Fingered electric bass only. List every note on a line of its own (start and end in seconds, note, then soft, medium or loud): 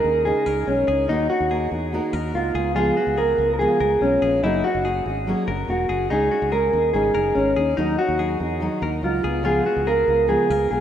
0.04 0.31 D#2 medium
0.46 0.64 C#2 medium
0.67 0.85 B1 medium
0.88 1.06 C#2 medium
1.09 1.27 D#2 medium
1.40 1.67 D#2 medium
1.71 1.98 E2 medium
2.13 2.31 D#2 loud
2.34 2.52 C#2 medium
2.55 2.90 C#2 medium
3.07 3.34 C#2 medium
3.38 3.65 C#2 medium
3.80 3.98 C#2 medium
4.01 4.19 B1 medium
4.22 4.40 A#1 medium
4.43 4.61 F#1 medium
4.75 5.01 F#1 medium
5.06 5.32 G#1 medium
5.48 5.65 F#1 loud
5.68 5.86 E1 medium
5.89 6.07 F#1 medium
6.11 6.28 C#2 medium
6.42 6.68 C#2 medium
6.73 6.91 D#2 medium
6.94 7.12 G#1 medium
7.15 7.33 F#1 medium
7.36 7.53 G#1 medium
7.57 7.75 D#2 medium
7.78 7.96 D#2 medium
8.09 8.35 D#2 medium
8.40 8.67 E2 medium
8.82 9.00 D#2 medium
9.03 9.21 C#2 medium
9.24 9.60 C#2 medium
9.76 10.03 C#2 medium
10.08 10.35 C#2 medium
10.50 10.68 C#2 medium
10.71 10.80 B1 medium